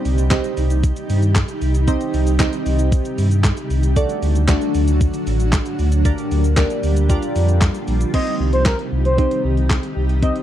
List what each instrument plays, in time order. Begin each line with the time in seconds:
Already playing: ambient pad C3 D#3 G3 D#4 G4, synth keys C4 D#4 G4 C5 D#5
0.05 sub bass C2, open hi-hat, shaker
0.18 closed hi-hat, shaker
0.30 synth keys C4 D#4 G4 C5 D#5, kick, snare, clap, closed hi-hat, shaker
0.44 closed hi-hat, shaker
0.57 sub bass C2, open hi-hat, shaker
0.70 closed hi-hat, shaker
0.83 kick, closed hi-hat, shaker
0.96 closed hi-hat, shaker
1.09 sub bass G2, open hi-hat, shaker
1.23 closed hi-hat, shaker
1.35 kick, snare, clap, closed hi-hat, shaker
1.48 closed hi-hat, shaker
1.62 sub bass C2, open hi-hat, shaker
1.75 closed hi-hat, shaker
1.87 synth keys C4 D#4 G4 C5 D#5, kick, closed hi-hat, shaker
2.01 closed hi-hat, shaker
2.14 sub bass C2, open hi-hat, shaker
2.27 closed hi-hat, shaker
2.39 synth keys C4 D#4 G4 C5 D#5, kick, snare, clap, closed hi-hat, shaker
2.53 closed hi-hat, shaker
2.66 sub bass C2, open hi-hat, shaker
2.79 closed hi-hat, shaker
2.92 kick, closed hi-hat, shaker
3.05 closed hi-hat, shaker
3.18 sub bass G2, open hi-hat, shaker
3.31 closed hi-hat, shaker
3.44 kick, snare, clap, closed hi-hat, shaker
3.57 closed hi-hat, shaker
3.70 sub bass C2, open hi-hat, shaker
3.83 closed hi-hat, shaker
3.96 ambient pad A2 D3 F#3 D4 F#4, synth keys A3 D4 F#4 A4 D5, kick, closed hi-hat, shaker
4.09 closed hi-hat, shaker
4.22 sub bass D2, open hi-hat, shaker
4.36 closed hi-hat, shaker
4.48 synth keys A3 D4 F#4 A4 D5, kick, snare, clap, closed hi-hat, shaker
4.62 closed hi-hat, shaker
4.75 sub bass D2, open hi-hat, shaker
4.88 closed hi-hat, shaker
5.01 kick, closed hi-hat, shaker
5.14 closed hi-hat, shaker
5.27 sub bass A1, open hi-hat, shaker
5.40 closed hi-hat, shaker
5.52 kick, snare, clap, closed hi-hat, shaker
5.66 closed hi-hat, shaker
5.79 sub bass D2, open hi-hat, shaker
5.92 closed hi-hat, shaker
6.05 ambient pad D3, synth keys A#3 D4 G4 A#4 D5, kick, closed hi-hat, shaker
6.18 closed hi-hat, shaker
6.31 sub bass D2, open hi-hat, shaker
6.44 closed hi-hat, shaker
6.57 synth keys A#3 D4 G4 A#4 D5, kick, snare, clap, closed hi-hat, shaker
6.70 closed hi-hat, shaker
6.83 sub bass D2, open hi-hat, shaker
6.97 closed hi-hat, shaker
7.09 synth keys D4 F4 G4 A#4 D5, kick, closed hi-hat, shaker
7.23 closed hi-hat, shaker
7.36 sub bass F2, open hi-hat, shaker
7.49 closed hi-hat, shaker
7.61 kick, snare, clap, closed hi-hat, shaker
7.75 closed hi-hat, shaker
7.88 sub bass A#1, open hi-hat, shaker
8.01 closed hi-hat, shaker
8.14 ambient pad C3 D#3 G3 D#4 G4, synth keys C4 D#4 G4 C5, analog synth lead D#5, kick, closed hi-hat, crash
8.27 closed hi-hat
8.40 sub bass C2
8.53 analog synth lead C5, closed hi-hat
8.65 analog synth lead A#4, kick, snare, clap, closed hi-hat
8.79 closed hi-hat
8.92 sub bass C2
9.05 analog synth lead C5, closed hi-hat
9.18 synth keys C4 D#4 G4 C5, kick, closed hi-hat
9.31 closed hi-hat
9.44 sub bass C2
9.57 closed hi-hat
9.70 kick, snare, clap, closed hi-hat
9.83 closed hi-hat
9.96 sub bass C2
10.09 closed hi-hat
10.22 synth keys C4 D#4 G4 C5, analog synth lead D#5, kick, closed hi-hat
10.36 closed hi-hat